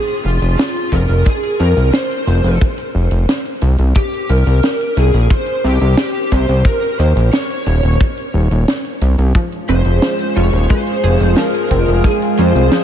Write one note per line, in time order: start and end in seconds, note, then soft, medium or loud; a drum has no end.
0.00 0.24 G#4 medium
0.08 closed hi-hat medium
0.24 0.39 F1 medium
0.24 0.57 F4 medium
0.42 0.56 F1 medium
0.42 closed hi-hat medium
0.58 0.93 F4 medium
0.58 snare loud
0.58 closed hi-hat medium
0.77 closed hi-hat soft
0.92 1.07 F1 medium
0.92 1.27 A#4 medium
0.92 kick medium
0.92 closed hi-hat medium
1.09 1.24 F1 medium
1.09 closed hi-hat soft
1.26 1.61 G#4 loud
1.26 kick loud
1.26 closed hi-hat loud
1.43 closed hi-hat medium
1.60 1.74 F2 loud
1.60 1.93 A#4 loud
1.60 closed hi-hat medium
1.77 1.91 C2 medium
1.77 closed hi-hat medium
1.93 2.57 C5 medium
1.93 snare loud
1.93 closed hi-hat medium
2.11 closed hi-hat medium
2.27 2.42 F1 medium
2.27 closed hi-hat medium
2.44 2.59 F1 medium
2.44 closed hi-hat soft
2.61 kick loud
2.61 closed hi-hat medium
2.78 closed hi-hat medium
2.95 3.09 F1 medium
3.11 3.26 F1 medium
3.11 closed hi-hat medium
3.29 snare loud
3.29 closed hi-hat medium
3.45 closed hi-hat medium
3.61 3.77 C2 medium
3.61 closed hi-hat medium
3.78 3.93 C2 medium
3.78 closed hi-hat medium
3.96 4.31 G4 medium
3.96 kick loud
3.96 closed hi-hat loud
4.13 closed hi-hat soft
4.29 4.44 C2 loud
4.29 4.99 A#4 medium
4.29 closed hi-hat medium
4.46 4.61 C2 medium
4.46 closed hi-hat soft
4.63 snare loud
4.63 closed hi-hat medium
4.81 closed hi-hat medium
4.97 5.11 C2 medium
4.97 5.28 G#4 medium
4.97 closed hi-hat medium
5.14 5.28 A#1 medium
5.14 closed hi-hat medium
5.30 5.65 C5 loud
5.30 kick loud
5.30 closed hi-hat loud
5.46 closed hi-hat medium
5.64 5.79 C2 medium
5.64 5.97 G4 medium
5.80 5.96 C2 medium
5.80 closed hi-hat medium
5.97 6.33 G4 medium
5.97 snare loud
5.97 closed hi-hat loud
6.15 closed hi-hat soft
6.32 6.46 C2 medium
6.32 6.65 C5 medium
6.32 kick medium
6.32 closed hi-hat medium
6.49 6.63 C2 medium
6.49 closed hi-hat medium
6.65 6.99 A#4 loud
6.65 kick loud
6.65 closed hi-hat medium
6.82 closed hi-hat soft
6.99 7.14 D#2 medium
6.99 7.08 C5 loud
6.99 closed hi-hat medium
7.16 7.30 A#1 medium
7.16 closed hi-hat medium
7.32 7.96 C#5 medium
7.32 snare loud
7.32 closed hi-hat medium
7.50 closed hi-hat medium
7.66 7.81 D#1 medium
7.66 closed hi-hat medium
7.83 7.98 D#1 medium
7.83 closed hi-hat medium
8.01 kick loud
8.01 closed hi-hat medium
8.17 closed hi-hat soft
8.34 8.48 D#1 medium
8.51 8.65 D#1 medium
8.51 closed hi-hat medium
8.68 snare loud
8.68 closed hi-hat medium
8.85 closed hi-hat medium
9.01 9.16 C2 medium
9.01 closed hi-hat medium
9.18 9.33 C2 medium
9.18 closed hi-hat soft
9.35 9.61 F3 loud
9.35 12.84 G#3 medium
9.35 12.84 F4 medium
9.35 12.84 G#4 medium
9.35 kick loud
9.35 closed hi-hat medium
9.52 closed hi-hat soft
9.68 9.83 F1 medium
9.68 10.01 C4 medium
9.68 10.36 C5 loud
9.68 closed hi-hat medium
9.85 10.00 F1 medium
9.85 closed hi-hat soft
10.02 10.28 F3 medium
10.02 snare loud
10.02 closed hi-hat medium
10.19 closed hi-hat medium
10.36 10.51 F1 medium
10.36 10.62 F4 medium
10.36 10.68 C#5 loud
10.36 closed hi-hat medium
10.53 10.68 D#1 medium
10.53 closed hi-hat medium
10.70 10.95 G#3 loud
10.70 11.33 C5 loud
10.70 kick loud
10.70 closed hi-hat medium
10.87 closed hi-hat medium
11.04 11.18 F1 medium
11.04 11.19 G#4 loud
11.20 11.35 F1 medium
11.20 closed hi-hat medium
11.37 11.53 F3 loud
11.37 12.07 A#4 medium
11.37 snare loud
11.37 closed hi-hat medium
11.55 closed hi-hat medium
11.71 11.85 F1 medium
11.71 11.86 C4 medium
11.71 kick medium
11.71 closed hi-hat medium
11.88 12.03 F1 medium
11.88 closed hi-hat soft
12.04 12.30 F3 medium
12.04 12.14 G#4 medium
12.04 kick loud
12.04 closed hi-hat medium
12.22 closed hi-hat soft
12.38 12.53 F2 medium
12.38 12.64 F4 medium
12.38 12.84 C5 medium
12.38 closed hi-hat medium
12.55 12.70 C2 medium
12.55 closed hi-hat medium
12.72 12.84 F3 loud
12.72 snare loud
12.72 closed hi-hat medium